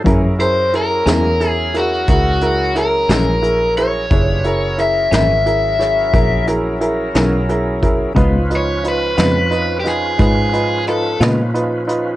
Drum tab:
HH |xxxxxxxxxxxx|xxxxxxxxxxxx|xxxxxxxxxxxx|
SD |---o-----o--|---o-o---o--|---o-o---o--|
BD |o-----o-----|o-----o----o|o-----o-----|